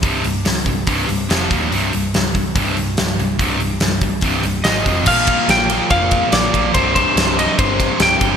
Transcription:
<<
  \new Staff \with { instrumentName = "Lead electric guitar" } { \time 4/4 \key c \minor \tempo 4 = 143 r1 | r1 | r2. ees''4 | f''4 g''4 f''4 d''4 |
c''8 c''4 ees''8 c''4 g''4 | }
  \new Staff \with { instrumentName = "Distorted electric guitar" } { \clef bass \time 4/4 \key c \minor <c, g, c>8 <c, g,>8 <c, g,>8 <c, g,>8 <c, g, c>8 <c, g,>8 <f, c f>8 <ees, bes, ees>8 | <c, g, c>8 <c, g,>8 <c, g,>8 <c, g,>8 <c, g, c>8 <c, g,>8 <c, g,>8 <c, g,>8 | <c, g, c>8 <c, g,>8 <c, g,>8 <c, g,>8 <c, g, c>8 <c, g,>8 <aes, ees aes>8 <f, c f>8 | <bes, f bes>4. <bes, f bes>2~ <bes, f bes>8 |
<c, g, c>4. <c, g, c>2~ <c, g, c>8 | }
  \new Staff \with { instrumentName = "Distorted electric guitar" } { \clef bass \time 4/4 \key c \minor <c, g, c>8 <c, g,>8 <c, g,>8 <c, g,>8 <c, g, c>8 <c, g,>8 <f, c f>8 <ees, bes, ees>8 | <c, g, c>8 <c, g,>8 <c, g,>8 <c, g,>8 <c, g, c>8 <c, g,>8 <c, g,>8 <c, g,>8 | <c, g, c>8 <c, g,>8 <c, g,>8 <c, g,>8 <c, g, c>8 <c, g,>8 <aes, ees aes>8 <f, c f>8 | <bes, f bes>2.~ <bes, f bes>8 <bes, f bes>8 |
<c, g, c>2.~ <c, g, c>8 <c, g, c>8 | }
  \new Staff \with { instrumentName = "Picked electric bass" } { \clef bass \time 4/4 \key c \minor c,,8 c,,8 c,,8 c,,8 c,,8 c,,8 f,,8 ees,,8 | c,,8 c,,8 c,,8 c,,8 c,,8 c,,8 c,,8 c,,8 | c,,8 c,,8 c,,8 c,,8 c,,8 c,,8 aes,,8 f,,8 | bes,,4 bes,,4 f,,4 bes,,8 bes,,8 |
c,,4 c,,4 g,,4 c,,8 g,,8 | }
  \new DrumStaff \with { instrumentName = "Drums" } \drummode { \time 4/4 <hho bd>8 hho8 <hho sn>8 <hho bd>8 <hho bd>8 hho8 <hho sn>8 <hho bd>8 | hho8 hho8 <hho sn>8 <hho bd>8 <hho bd>8 hho8 <hho sn>8 hho8 | <hho bd>8 hho8 <hho sn>8 <hho bd>8 <hho bd>8 hho8 <hho sn>8 <hho bd>8 | <cymc bd>8 <bd cymr>8 <cymr sn>8 cymr8 <bd cymr>8 <bd cymr>8 <cymr sn>8 <bd cymr>8 |
<bd cymr>8 <bd cymr>8 <cymr sn>8 cymr8 <bd cymr>8 <bd cymr>8 <cymr sn>8 <bd cymr>8 | }
>>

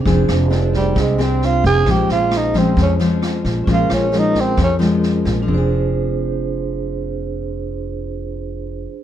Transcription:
<<
  \new Staff \with { instrumentName = "Vibraphone" } { \time 4/4 \key f \minor \tempo 4 = 133 <d' aes' c''>1 | <des' f' aes' c''>1 | <des' f' aes' bes'>1 | <d' aes' c''>1~ |
<d' aes' c''>1 | }
  \new Staff \with { instrumentName = "Tenor saxophone" } { \time 4/4 \key f \minor r4. g8 aes8 c'8 f'8 aes'8 | g'8 f'8 ees'8 c'8 des'8 r4. | f'8 des'8 ees'8 c'8 des'8 r4. | r1 |
r1 | }
  \new Staff \with { instrumentName = "Nylon-string guitar" } { \clef bass \time 4/4 \key f \minor << { <c' d' aes'>4 <c' d' aes'>4. <c' d' aes'>4. | <f aes des'>4. <f aes des'>4 <f aes des'>4. | <f aes des'>4 <f aes des'>4 r8 <f aes des'>4. | <f c' d' aes'>1~ |
<f c' d' aes'>1 | } \\ { f2 c2 | bes,2 f,2 | bes,2 f,2 | r1 |
r1 | } >> }
  \new Staff \with { instrumentName = "Upright bass" } { \clef bass \time 4/4 \key f \minor f,,8 f,,4. c,4. f,,8 | bes,,8 bes,,4. f,4. bes,,8 | bes,,8 bes,,4. f,4. bes,,8 | f,,1~ |
f,,1 | }
  \new DrumStaff \with { instrumentName = "Drums" } \drummode { \time 4/4 <bd sn>8 <ss sn>8 sn8 <bd sn>8 <bd ss sn>8 sn8 sn8 <bd sn>8 | <bd ss sn>8 sn8 <ss sn>8 <bd sn>8 <bd sn>8 sn8 <ss sn>8 <bd sn>8 | <bd sn>8 <ss sn>8 sn8 <bd sn>8 <bd ss sn>8 sn8 sn8 <bd sn>8 | r4 r4 r4 r4 |
r4 r4 r4 r4 | }
>>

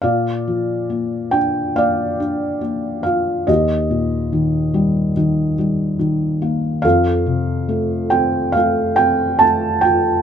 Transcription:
<<
  \new Staff \with { instrumentName = "Felt piano" } { \time 4/4 \key bes \major \tempo 4 = 70 << { f''4. g''8 f''4. f''8 | ees''2 r2 | f''4. g''8 f''8 g''8 a''8 g''8 | } \\ { d''2 d''2 | g'2 r2 | a'2 a'2 | } >> }
  \new Staff \with { instrumentName = "Felt piano" } { \time 4/4 \key bes \major bes,8 f8 bes8 d'8 bes8 d'8 bes8 f'8 | ees,8 bes,8 ees8 g8 ees8 g8 ees8 bes8 | f,8 c8 a8 c'8 a8 c'8 a8 f'8 | }
>>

